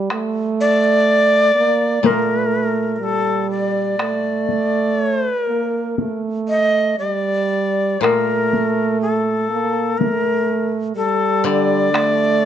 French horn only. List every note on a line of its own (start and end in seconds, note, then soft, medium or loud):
0.11 1.55 A3 medium
1.56 2.02 A#3 medium
2.03 3.00 A3 medium
3.00 3.98 G3 medium
3.99 5.31 A3 medium
5.48 5.98 A#3 medium
5.98 6.98 A3 medium
6.99 8.00 G3 medium
8.01 9.50 A3 medium
9.50 9.98 A#3 medium
9.99 10.95 A3 medium
10.96 11.92 G3 medium
11.93 12.45 A3 medium